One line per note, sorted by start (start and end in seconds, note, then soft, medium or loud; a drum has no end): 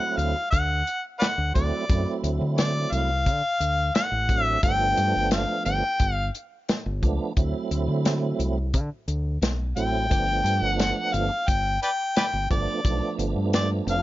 0.00 0.36 F#3 medium
0.00 0.36 A3 medium
0.00 0.37 C4 medium
0.00 0.37 E4 medium
0.00 0.19 F#5 loud
0.17 0.33 D2 medium
0.17 0.50 F5 medium
0.17 closed hi-hat medium
0.51 0.82 D2 medium
0.51 1.02 F#5 loud
0.51 kick medium
0.51 closed hi-hat medium
0.87 closed hi-hat medium
1.19 1.27 B4 medium
1.19 1.26 D5 medium
1.19 1.52 F#5 loud
1.19 snare loud
1.19 closed hi-hat medium
1.38 1.52 D2 medium
1.54 1.70 D2 medium
1.54 1.85 F#3 medium
1.54 1.85 A3 medium
1.54 1.85 C4 medium
1.54 1.86 E4 medium
1.54 2.19 D5 medium
1.54 kick medium
1.54 closed hi-hat medium
1.89 2.04 F#2 medium
1.89 3.10 F#3 medium
1.89 3.10 A3 medium
1.89 3.11 C4 medium
1.89 3.11 E4 medium
1.89 kick loud
1.89 closed hi-hat medium
2.23 2.38 D2 medium
2.23 closed hi-hat medium
2.41 2.85 D3 medium
2.58 2.94 D5 medium
2.58 snare loud
2.58 closed hi-hat medium
2.92 3.28 C2 loud
2.92 3.94 F5 medium
2.92 closed hi-hat medium
3.26 3.41 D3 loud
3.26 kick medium
3.26 closed hi-hat medium
3.60 3.89 D2 medium
3.60 closed hi-hat medium
3.95 4.43 F#5 medium
3.95 snare loud
3.95 closed hi-hat medium
4.12 4.55 A1 medium
4.29 4.59 F#3 medium
4.29 4.59 A3 medium
4.29 4.60 C4 medium
4.29 4.60 D4 medium
4.29 kick medium
4.29 closed hi-hat medium
4.43 4.59 E5 medium
4.62 4.92 G1 loud
4.62 5.84 F3 medium
4.62 5.84 A3 medium
4.62 5.84 B3 medium
4.62 5.85 D4 medium
4.62 5.28 G5 loud
4.62 kick loud
4.62 closed hi-hat medium
4.97 5.12 G2 medium
4.97 closed hi-hat medium
5.16 5.44 G1 medium
5.31 5.64 F5 medium
5.31 snare loud
5.31 closed hi-hat medium
5.65 5.81 G1 loud
5.65 6.14 G5 loud
5.65 closed hi-hat medium
5.99 6.29 G1 loud
5.99 kick medium
5.99 closed hi-hat medium
6.14 6.30 F5 loud
6.35 closed hi-hat medium
6.69 snare loud
6.69 closed hi-hat medium
6.86 7.00 G1 medium
7.02 7.18 C#2 medium
7.02 7.32 F3 medium
7.02 7.33 A3 medium
7.02 7.33 B3 medium
7.02 7.33 D4 medium
7.02 kick medium
7.02 closed hi-hat medium
7.37 7.52 D2 medium
7.37 8.58 F#3 medium
7.37 8.58 A3 medium
7.37 8.58 C4 medium
7.37 8.59 E4 medium
7.37 kick loud
7.37 closed hi-hat medium
7.71 7.86 D2 medium
7.71 closed hi-hat medium
7.88 8.32 D3 medium
8.05 snare loud
8.05 closed hi-hat medium
8.39 8.75 C2 loud
8.39 closed hi-hat medium
8.74 8.89 D3 loud
8.74 kick medium
8.74 closed hi-hat medium
9.08 9.37 D2 medium
9.08 closed hi-hat medium
9.41 9.73 B1 medium
9.41 snare loud
9.41 closed hi-hat medium
9.76 10.07 A1 medium
9.76 10.06 F#3 medium
9.76 10.07 A3 medium
9.76 10.07 C4 medium
9.76 10.07 E4 medium
9.76 10.63 G5 loud
9.76 closed hi-hat medium
10.10 10.40 G1 medium
10.10 11.31 F3 medium
10.10 11.31 A3 medium
10.10 11.31 B3 medium
10.10 11.32 D4 medium
10.10 kick medium
10.10 closed hi-hat medium
10.44 10.59 G2 medium
10.44 closed hi-hat medium
10.61 10.91 G1 medium
10.61 11.16 F#5 loud
10.79 snare loud
10.79 closed hi-hat medium
11.14 11.28 G1 loud
11.14 11.50 F5 medium
11.14 closed hi-hat medium
11.48 11.77 G1 medium
11.48 11.82 G5 loud
11.48 kick medium
11.48 closed hi-hat medium
11.83 11.90 B4 medium
11.83 11.90 D5 medium
11.83 12.14 G5 medium
11.83 closed hi-hat medium
12.16 12.25 B4 medium
12.16 12.25 D5 medium
12.16 12.48 G5 loud
12.16 snare loud
12.16 closed hi-hat medium
12.33 12.48 G1 medium
12.50 12.65 G1 medium
12.50 12.80 F3 medium
12.50 12.81 A3 medium
12.50 12.81 B3 medium
12.50 12.81 D4 medium
12.50 13.15 D5 medium
12.50 kick medium
12.50 closed hi-hat medium
12.85 13.00 B1 medium
12.85 14.02 F3 medium
12.85 14.02 A3 medium
12.85 14.02 B3 medium
12.85 14.02 D4 medium
12.85 kick loud
12.85 closed hi-hat medium
13.18 13.33 G1 medium
13.18 closed hi-hat medium
13.36 13.79 G2 medium
13.53 13.70 D5 medium
13.53 snare loud
13.53 closed hi-hat medium
13.87 14.02 F1 medium
13.87 14.02 F5 medium
13.87 closed hi-hat medium